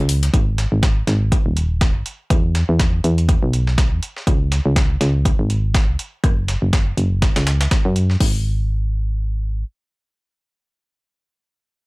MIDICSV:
0, 0, Header, 1, 3, 480
1, 0, Start_track
1, 0, Tempo, 491803
1, 327, Time_signature, 4, 2, 24, 8
1, 11576, End_track
2, 0, Start_track
2, 0, Title_t, "FM bass"
2, 0, Program_c, 0, 39
2, 0, Note_on_c, 0, 37, 102
2, 290, Note_off_c, 0, 37, 0
2, 328, Note_on_c, 0, 32, 99
2, 655, Note_off_c, 0, 32, 0
2, 703, Note_on_c, 0, 32, 88
2, 1010, Note_off_c, 0, 32, 0
2, 1048, Note_on_c, 0, 32, 100
2, 1375, Note_off_c, 0, 32, 0
2, 1424, Note_on_c, 0, 27, 102
2, 1904, Note_on_c, 0, 32, 98
2, 1919, Note_off_c, 0, 27, 0
2, 1985, Note_off_c, 0, 32, 0
2, 2248, Note_on_c, 0, 40, 95
2, 2575, Note_off_c, 0, 40, 0
2, 2625, Note_on_c, 0, 40, 88
2, 2931, Note_off_c, 0, 40, 0
2, 2969, Note_on_c, 0, 40, 96
2, 3296, Note_off_c, 0, 40, 0
2, 3344, Note_on_c, 0, 35, 100
2, 3825, Note_on_c, 0, 40, 99
2, 3839, Note_off_c, 0, 35, 0
2, 3905, Note_off_c, 0, 40, 0
2, 4168, Note_on_c, 0, 37, 96
2, 4495, Note_off_c, 0, 37, 0
2, 4544, Note_on_c, 0, 37, 90
2, 4850, Note_off_c, 0, 37, 0
2, 4888, Note_on_c, 0, 37, 99
2, 5215, Note_off_c, 0, 37, 0
2, 5263, Note_on_c, 0, 32, 98
2, 5744, Note_on_c, 0, 37, 95
2, 5758, Note_off_c, 0, 32, 0
2, 5824, Note_off_c, 0, 37, 0
2, 6088, Note_on_c, 0, 30, 94
2, 6415, Note_off_c, 0, 30, 0
2, 6463, Note_on_c, 0, 30, 85
2, 6770, Note_off_c, 0, 30, 0
2, 6807, Note_on_c, 0, 30, 94
2, 7135, Note_off_c, 0, 30, 0
2, 7184, Note_on_c, 0, 37, 93
2, 7491, Note_off_c, 0, 37, 0
2, 7663, Note_on_c, 0, 42, 93
2, 7970, Note_off_c, 0, 42, 0
2, 8008, Note_on_c, 0, 32, 95
2, 9409, Note_off_c, 0, 32, 0
2, 11576, End_track
3, 0, Start_track
3, 0, Title_t, "Drums"
3, 87, Note_on_c, 9, 46, 102
3, 89, Note_on_c, 9, 42, 64
3, 184, Note_off_c, 9, 46, 0
3, 186, Note_off_c, 9, 42, 0
3, 223, Note_on_c, 9, 42, 59
3, 224, Note_on_c, 9, 38, 41
3, 320, Note_off_c, 9, 42, 0
3, 322, Note_off_c, 9, 38, 0
3, 328, Note_on_c, 9, 36, 110
3, 328, Note_on_c, 9, 42, 81
3, 425, Note_off_c, 9, 36, 0
3, 426, Note_off_c, 9, 42, 0
3, 568, Note_on_c, 9, 38, 52
3, 568, Note_on_c, 9, 42, 65
3, 666, Note_off_c, 9, 38, 0
3, 666, Note_off_c, 9, 42, 0
3, 808, Note_on_c, 9, 36, 105
3, 809, Note_on_c, 9, 38, 110
3, 809, Note_on_c, 9, 42, 84
3, 905, Note_off_c, 9, 36, 0
3, 906, Note_off_c, 9, 38, 0
3, 906, Note_off_c, 9, 42, 0
3, 1049, Note_on_c, 9, 38, 54
3, 1049, Note_on_c, 9, 42, 64
3, 1146, Note_off_c, 9, 38, 0
3, 1146, Note_off_c, 9, 42, 0
3, 1288, Note_on_c, 9, 36, 113
3, 1289, Note_on_c, 9, 42, 86
3, 1385, Note_off_c, 9, 36, 0
3, 1386, Note_off_c, 9, 42, 0
3, 1529, Note_on_c, 9, 42, 65
3, 1626, Note_off_c, 9, 42, 0
3, 1768, Note_on_c, 9, 36, 101
3, 1768, Note_on_c, 9, 38, 112
3, 1768, Note_on_c, 9, 42, 82
3, 1865, Note_off_c, 9, 36, 0
3, 1865, Note_off_c, 9, 38, 0
3, 1865, Note_off_c, 9, 42, 0
3, 2008, Note_on_c, 9, 42, 66
3, 2106, Note_off_c, 9, 42, 0
3, 2248, Note_on_c, 9, 36, 107
3, 2248, Note_on_c, 9, 42, 81
3, 2346, Note_off_c, 9, 36, 0
3, 2346, Note_off_c, 9, 42, 0
3, 2488, Note_on_c, 9, 38, 54
3, 2488, Note_on_c, 9, 42, 63
3, 2586, Note_off_c, 9, 38, 0
3, 2586, Note_off_c, 9, 42, 0
3, 2728, Note_on_c, 9, 36, 98
3, 2728, Note_on_c, 9, 38, 110
3, 2728, Note_on_c, 9, 42, 81
3, 2826, Note_off_c, 9, 36, 0
3, 2826, Note_off_c, 9, 38, 0
3, 2826, Note_off_c, 9, 42, 0
3, 2969, Note_on_c, 9, 42, 64
3, 3066, Note_off_c, 9, 42, 0
3, 3104, Note_on_c, 9, 42, 42
3, 3202, Note_off_c, 9, 42, 0
3, 3208, Note_on_c, 9, 36, 107
3, 3208, Note_on_c, 9, 42, 83
3, 3306, Note_off_c, 9, 36, 0
3, 3306, Note_off_c, 9, 42, 0
3, 3449, Note_on_c, 9, 42, 60
3, 3547, Note_off_c, 9, 42, 0
3, 3585, Note_on_c, 9, 38, 43
3, 3683, Note_off_c, 9, 38, 0
3, 3688, Note_on_c, 9, 36, 92
3, 3689, Note_on_c, 9, 38, 107
3, 3689, Note_on_c, 9, 42, 81
3, 3786, Note_off_c, 9, 36, 0
3, 3787, Note_off_c, 9, 38, 0
3, 3787, Note_off_c, 9, 42, 0
3, 3929, Note_on_c, 9, 42, 63
3, 4027, Note_off_c, 9, 42, 0
3, 4065, Note_on_c, 9, 38, 42
3, 4163, Note_off_c, 9, 38, 0
3, 4168, Note_on_c, 9, 36, 104
3, 4169, Note_on_c, 9, 42, 77
3, 4265, Note_off_c, 9, 36, 0
3, 4267, Note_off_c, 9, 42, 0
3, 4409, Note_on_c, 9, 38, 51
3, 4409, Note_on_c, 9, 42, 64
3, 4507, Note_off_c, 9, 38, 0
3, 4507, Note_off_c, 9, 42, 0
3, 4648, Note_on_c, 9, 36, 96
3, 4648, Note_on_c, 9, 38, 106
3, 4648, Note_on_c, 9, 42, 83
3, 4745, Note_off_c, 9, 36, 0
3, 4746, Note_off_c, 9, 38, 0
3, 4746, Note_off_c, 9, 42, 0
3, 4888, Note_on_c, 9, 38, 53
3, 4888, Note_on_c, 9, 42, 63
3, 4986, Note_off_c, 9, 38, 0
3, 4986, Note_off_c, 9, 42, 0
3, 5127, Note_on_c, 9, 36, 101
3, 5129, Note_on_c, 9, 42, 82
3, 5225, Note_off_c, 9, 36, 0
3, 5226, Note_off_c, 9, 42, 0
3, 5367, Note_on_c, 9, 42, 63
3, 5465, Note_off_c, 9, 42, 0
3, 5607, Note_on_c, 9, 38, 109
3, 5607, Note_on_c, 9, 42, 78
3, 5608, Note_on_c, 9, 36, 93
3, 5705, Note_off_c, 9, 36, 0
3, 5705, Note_off_c, 9, 38, 0
3, 5705, Note_off_c, 9, 42, 0
3, 5848, Note_on_c, 9, 42, 64
3, 5945, Note_off_c, 9, 42, 0
3, 6086, Note_on_c, 9, 37, 59
3, 6087, Note_on_c, 9, 42, 80
3, 6088, Note_on_c, 9, 36, 104
3, 6184, Note_off_c, 9, 37, 0
3, 6185, Note_off_c, 9, 36, 0
3, 6185, Note_off_c, 9, 42, 0
3, 6328, Note_on_c, 9, 38, 53
3, 6328, Note_on_c, 9, 42, 62
3, 6426, Note_off_c, 9, 38, 0
3, 6426, Note_off_c, 9, 42, 0
3, 6568, Note_on_c, 9, 36, 93
3, 6568, Note_on_c, 9, 38, 105
3, 6568, Note_on_c, 9, 42, 80
3, 6665, Note_off_c, 9, 36, 0
3, 6666, Note_off_c, 9, 38, 0
3, 6666, Note_off_c, 9, 42, 0
3, 6808, Note_on_c, 9, 42, 71
3, 6906, Note_off_c, 9, 42, 0
3, 7048, Note_on_c, 9, 36, 102
3, 7048, Note_on_c, 9, 38, 94
3, 7048, Note_on_c, 9, 42, 75
3, 7145, Note_off_c, 9, 36, 0
3, 7146, Note_off_c, 9, 38, 0
3, 7146, Note_off_c, 9, 42, 0
3, 7185, Note_on_c, 9, 38, 95
3, 7185, Note_on_c, 9, 42, 70
3, 7282, Note_off_c, 9, 38, 0
3, 7282, Note_off_c, 9, 42, 0
3, 7288, Note_on_c, 9, 38, 94
3, 7288, Note_on_c, 9, 42, 73
3, 7386, Note_off_c, 9, 38, 0
3, 7386, Note_off_c, 9, 42, 0
3, 7424, Note_on_c, 9, 38, 94
3, 7424, Note_on_c, 9, 42, 71
3, 7521, Note_off_c, 9, 38, 0
3, 7521, Note_off_c, 9, 42, 0
3, 7527, Note_on_c, 9, 38, 107
3, 7527, Note_on_c, 9, 42, 79
3, 7528, Note_on_c, 9, 36, 92
3, 7625, Note_off_c, 9, 38, 0
3, 7625, Note_off_c, 9, 42, 0
3, 7626, Note_off_c, 9, 36, 0
3, 7768, Note_on_c, 9, 42, 62
3, 7865, Note_off_c, 9, 42, 0
3, 7903, Note_on_c, 9, 38, 41
3, 8001, Note_off_c, 9, 38, 0
3, 8008, Note_on_c, 9, 36, 91
3, 8008, Note_on_c, 9, 46, 79
3, 8106, Note_off_c, 9, 36, 0
3, 8106, Note_off_c, 9, 46, 0
3, 11576, End_track
0, 0, End_of_file